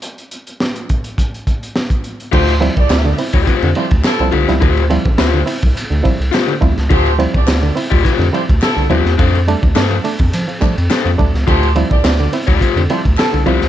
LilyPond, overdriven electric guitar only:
\new Staff \with { instrumentName = "Overdriven electric guitar" } { \time 4/4 \key d \minor \tempo 4 = 105 r1 | <f' g' c''>16 r4. <f' g' d''>16 <f' g' c''>16 r4 r16 <f' g' c''>16 r16 | <f' g' c''>16 r8. <f' g' c''>16 r4. r16 <f' g' c''>16 r8. | <f' g' c''>16 r4. <f' g' d''>16 <f' g' c''>16 r4 r16 <f' g' c''>16 r16 |
<d' a' c''>16 r8. <d' a' c''>16 r4. r16 <d' a' c''>16 r8. | <f' g' c''>16 r4. <f' g' d''>16 <f' g' c''>16 r4 r16 <f' g' c''>16 r16 | }